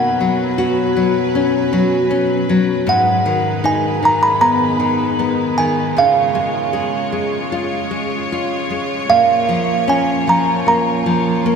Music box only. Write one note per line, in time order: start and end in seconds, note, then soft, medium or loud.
0.00 2.06 F#5 medium
2.89 3.67 F#5 medium
3.66 4.00 G#5 medium
4.05 4.24 A#5 loud
4.23 4.40 B5 loud
4.41 5.61 A#5 loud
5.58 5.98 G#5 medium
5.98 6.71 F5 medium
9.10 9.85 F5 medium
9.89 10.29 G#5 medium
10.29 10.67 A#5 medium
10.68 11.56 A#5 medium